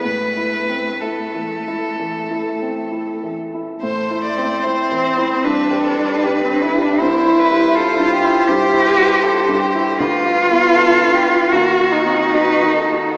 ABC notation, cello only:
X:1
M:4/4
L:1/16
Q:1/4=75
K:Am
V:1 name="Cello"
A,12- A,3 z | A,4 C4 D4- D C E D | E4 F4 G6 z2 | F8 ^F2 ^D6 |]